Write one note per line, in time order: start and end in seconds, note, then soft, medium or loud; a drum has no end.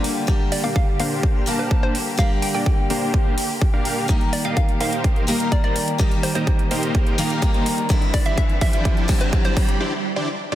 0.00 0.25 D3 loud
0.00 4.05 D3 medium
0.00 0.25 G3 medium
0.00 0.25 A#3 medium
0.00 7.86 A#3 medium
0.00 0.26 F4 medium
0.00 7.86 G4 medium
0.04 open hi-hat loud
0.27 1.44 D3 medium
0.27 1.44 G3 medium
0.27 0.41 A#3 medium
0.27 1.45 A#3 medium
0.27 0.41 D4 medium
0.27 0.41 G4 medium
0.27 1.45 G4 loud
0.27 0.41 A#4 medium
0.27 0.41 D5 medium
0.27 kick loud
0.52 0.61 D5 medium
0.52 open hi-hat loud
0.64 0.76 A#3 medium
0.64 0.76 D4 medium
0.64 0.76 G4 medium
0.64 0.76 A#4 medium
0.64 0.76 D5 medium
0.64 0.71 F5 medium
0.76 0.83 F5 medium
0.76 kick loud
1.00 1.44 A#3 medium
1.00 1.44 D4 medium
1.00 1.44 G4 medium
1.00 1.44 A#4 medium
1.00 1.44 C5 loud
1.00 1.15 F5 medium
1.00 open hi-hat medium
1.23 kick loud
1.46 2.15 D3 medium
1.46 2.16 G3 medium
1.46 1.80 A#3 medium
1.46 2.16 A#3 medium
1.46 1.80 D4 medium
1.46 1.80 G4 medium
1.46 1.80 A#4 medium
1.46 1.80 F5 medium
1.46 2.16 A5 medium
1.46 open hi-hat loud
1.59 1.74 C5 medium
1.71 kick loud
1.83 1.95 A#3 medium
1.83 1.95 D4 medium
1.83 1.95 G4 medium
1.83 1.95 A#4 medium
1.83 1.95 C5 medium
1.83 1.98 C5 loud
1.95 open hi-hat medium
2.17 3.34 D3 loud
2.17 3.35 G3 medium
2.17 2.31 A#3 medium
2.17 3.35 A#3 medium
2.17 2.31 D4 medium
2.17 2.31 G4 medium
2.17 3.35 G4 loud
2.17 2.31 A#4 medium
2.17 2.31 D5 medium
2.17 2.34 F5 medium
2.17 kick loud
2.42 2.50 G5 medium
2.42 open hi-hat loud
2.54 2.67 A#3 medium
2.54 2.67 D4 medium
2.54 2.67 G4 medium
2.54 2.67 A#4 medium
2.54 2.67 D5 medium
2.54 2.62 G5 medium
2.66 kick loud
2.90 3.35 A#3 loud
2.90 3.35 D4 medium
2.90 3.35 G4 medium
2.90 3.35 A#4 medium
2.90 3.35 C5 loud
2.90 open hi-hat medium
3.14 kick loud
3.38 open hi-hat loud
3.62 kick loud
3.73 4.06 A#3 medium
3.73 4.06 D4 medium
3.73 4.06 G4 medium
3.73 4.06 A#4 medium
3.73 4.06 F5 loud
3.85 open hi-hat medium
4.08 5.25 D#3 medium
4.08 7.86 D#3 medium
4.08 5.25 G3 medium
4.08 4.21 A#3 medium
4.08 5.26 A#3 medium
4.08 4.21 D#4 medium
4.08 5.26 G4 medium
4.08 4.21 D#5 loud
4.08 kick loud
4.08 closed hi-hat soft
4.08 riser medium
4.21 closed hi-hat soft
4.33 4.42 D5 medium
4.33 open hi-hat loud
4.45 4.57 A#3 medium
4.45 4.57 D#4 medium
4.45 4.57 G4 medium
4.45 4.57 A#4 medium
4.45 4.57 D#5 medium
4.45 4.52 F5 loud
4.45 closed hi-hat soft
4.57 4.64 F5 medium
4.57 kick loud
4.57 closed hi-hat medium
4.69 closed hi-hat soft
4.80 5.25 A#3 medium
4.80 5.25 D#4 medium
4.80 5.25 G4 medium
4.80 5.25 A#4 medium
4.80 5.25 C5 loud
4.80 4.96 F5 loud
4.80 open hi-hat medium
4.92 closed hi-hat soft
5.04 kick loud
5.04 closed hi-hat soft
5.16 closed hi-hat soft
5.27 5.96 D#3 medium
5.27 5.96 G3 medium
5.27 5.61 A#3 medium
5.27 5.97 A#3 medium
5.27 5.61 D#4 medium
5.27 5.61 G4 medium
5.27 5.61 A#4 medium
5.27 5.97 A#4 medium
5.27 5.61 F5 medium
5.27 open hi-hat loud
5.40 closed hi-hat soft
5.52 5.60 D5 medium
5.52 kick loud
5.52 closed hi-hat soft
5.64 5.76 A#3 medium
5.64 5.76 D#4 medium
5.64 5.76 G4 medium
5.64 5.76 A#4 medium
5.64 5.76 C5 medium
5.64 5.71 D5 medium
5.64 closed hi-hat soft
5.76 open hi-hat loud
5.88 closed hi-hat medium
5.98 7.15 D#3 loud
5.98 7.16 G3 medium
5.98 6.12 A#3 medium
5.98 7.16 A#3 medium
5.98 6.12 D#4 medium
5.98 6.12 G4 medium
5.98 7.16 G4 loud
5.98 6.12 A#4 medium
5.98 6.12 D#5 loud
5.98 kick loud
5.98 closed hi-hat soft
6.11 closed hi-hat soft
6.23 6.33 C5 medium
6.23 open hi-hat loud
6.35 6.48 A#3 medium
6.35 6.48 D#4 medium
6.35 6.48 G4 medium
6.35 6.48 A#4 medium
6.35 6.83 C5 medium
6.35 6.48 D#5 medium
6.35 closed hi-hat medium
6.47 kick loud
6.47 closed hi-hat medium
6.59 closed hi-hat soft
6.71 7.16 A#3 medium
6.71 7.16 D#4 medium
6.71 7.16 G4 medium
6.71 7.16 A#4 medium
6.71 7.16 C5 loud
6.71 open hi-hat medium
6.83 closed hi-hat medium
6.95 kick loud
6.95 closed hi-hat medium
7.07 closed hi-hat soft
7.18 7.39 D#3 loud
7.18 7.39 G3 medium
7.18 7.52 A#3 medium
7.18 7.40 A#3 medium
7.18 7.51 D#4 medium
7.18 7.40 F4 loud
7.18 7.52 G4 medium
7.18 7.51 A#4 medium
7.18 7.51 F5 medium
7.18 open hi-hat loud
7.30 closed hi-hat medium
7.42 7.87 D#3 medium
7.42 7.87 G3 medium
7.42 7.87 A#3 medium
7.42 7.88 F4 loud
7.42 kick loud
7.42 closed hi-hat medium
7.54 7.67 A#3 medium
7.54 7.67 D#4 medium
7.54 7.67 G4 medium
7.54 7.67 A#4 medium
7.54 7.67 C5 medium
7.54 closed hi-hat soft
7.66 open hi-hat medium
7.78 closed hi-hat medium
7.89 9.06 D3 medium
7.89 9.79 D3 medium
7.89 9.06 G3 medium
7.89 9.79 C4 medium
7.89 9.06 C4 medium
7.89 8.02 D4 medium
7.89 9.79 E4 medium
7.89 8.02 E4 medium
7.89 9.07 E4 loud
7.89 8.02 G4 medium
7.89 8.02 C5 medium
7.89 8.02 D5 loud
7.89 kick loud
7.89 closed hi-hat medium
8.02 closed hi-hat soft
8.14 8.23 D5 medium
8.14 kick loud
8.14 open hi-hat loud
8.26 8.38 D4 medium
8.26 8.38 E4 medium
8.26 8.38 G4 medium
8.26 8.38 C5 medium
8.26 8.38 D5 medium
8.26 8.33 E5 loud
8.26 closed hi-hat medium
8.38 8.45 E5 medium
8.38 kick loud
8.38 closed hi-hat medium
8.49 closed hi-hat soft
8.61 9.06 D4 loud
8.61 9.06 E4 medium
8.61 9.06 G4 medium
8.61 9.06 C5 medium
8.61 9.06 D5 loud
8.61 8.77 E5 medium
8.61 kick loud
8.61 open hi-hat medium
8.73 closed hi-hat medium
8.85 kick loud
8.85 closed hi-hat medium
8.97 closed hi-hat soft
9.08 9.77 D3 medium
9.08 9.77 G3 medium
9.08 9.78 C4 medium
9.08 9.42 E4 medium
9.08 9.42 G4 medium
9.08 9.78 G4 medium
9.08 9.42 C5 medium
9.08 9.42 E5 medium
9.08 kick loud
9.08 open hi-hat loud
9.21 9.36 C5 medium
9.21 closed hi-hat medium
9.33 kick loud
9.33 closed hi-hat medium
9.45 9.57 D4 medium
9.45 9.57 E4 medium
9.45 9.57 G4 medium
9.45 9.57 C5 medium
9.45 9.60 C5 loud
9.45 9.57 D5 medium
9.45 closed hi-hat soft
9.57 kick loud
9.57 open hi-hat medium
9.69 closed hi-hat medium
9.80 9.93 D4 medium
9.80 9.93 E4 medium
9.80 9.93 G4 medium
9.80 9.93 C5 medium
9.80 9.93 D5 medium
10.16 10.29 D4 medium
10.16 10.29 E4 medium
10.16 10.29 G4 medium
10.16 10.29 C5 medium
10.16 10.29 D5 medium
10.52 10.55 D4 medium
10.52 10.55 E4 medium
10.52 10.55 G4 medium
10.52 10.55 C5 medium
10.52 10.55 D5 loud